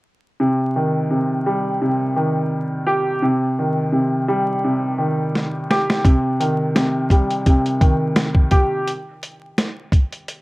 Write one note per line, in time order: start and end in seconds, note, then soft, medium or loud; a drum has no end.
0.40 1.09 C3 medium
0.76 2.15 D#3 medium
1.10 1.80 C3 medium
1.46 3.23 G3 medium
1.82 3.21 C3 medium
2.16 3.22 D#3 medium
2.87 3.22 G4 medium
3.22 3.91 C3 medium
3.59 4.97 D#3 medium
3.92 4.63 C3 medium
4.28 6.05 G3 medium
4.64 6.03 C3 medium
4.98 6.05 D#3 medium
5.35 snare medium
5.70 6.05 G4 medium
5.70 snare medium
5.90 snare medium
6.04 6.73 C3 medium
6.04 kick loud
6.04 closed hi-hat medium
6.40 7.79 D#3 medium
6.40 closed hi-hat medium
6.75 7.45 C3 medium
6.75 snare loud
6.75 closed hi-hat medium
7.10 8.87 G3 medium
7.10 kick medium
7.10 closed hi-hat medium
7.30 closed hi-hat soft
7.46 8.87 C3 medium
7.46 kick medium
7.46 closed hi-hat medium
7.66 closed hi-hat soft
7.81 8.87 D#3 medium
7.81 kick loud
7.81 closed hi-hat medium
8.16 snare loud
8.16 closed hi-hat medium
8.35 kick medium
8.51 8.87 G4 medium
8.51 kick medium
8.51 closed hi-hat medium
8.87 closed hi-hat medium
9.23 closed hi-hat medium
9.58 snare loud
9.58 closed hi-hat medium
9.92 kick medium
9.92 closed hi-hat medium
10.13 closed hi-hat medium
10.28 closed hi-hat medium